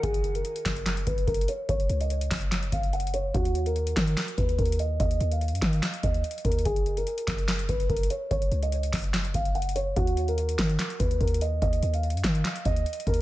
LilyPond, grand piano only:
\new Staff \with { instrumentName = "Grand piano" } { \time 4/4 \key fis \major \tempo 4 = 145 gis'8. ais'4.~ ais'16 b'8 ais'8 cis''8 | cis''8. dis''4.~ dis''16 eis''8 fis''8 cis''8 | fis'8. ais'4.~ ais'16 b'8 ais'8 dis''8 | dis''8. eis''4.~ eis''16 dis''4 ais'8 |
gis'8. ais'4.~ ais'16 b'8 ais'8 cis''8 | cis''8. dis''4.~ dis''16 eis''8 fis''8 cis''8 | fis'8. ais'4.~ ais'16 b'8 ais'8 dis''8 | dis''8. eis''4.~ eis''16 dis''4 ais'8 | }